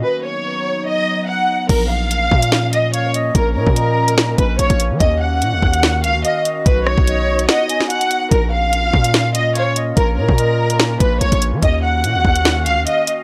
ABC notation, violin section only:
X:1
M:4/4
L:1/8
Q:1/4=145
K:Bbphr
V:1 name="Violin section"
=B d3 ^d2 ^f2 | B f4 e d z | B B4 c d z | e g4 f e z |
=B d3 ^d2 ^f2 | B f4 e d z | B B4 c d z | e g4 f e z |]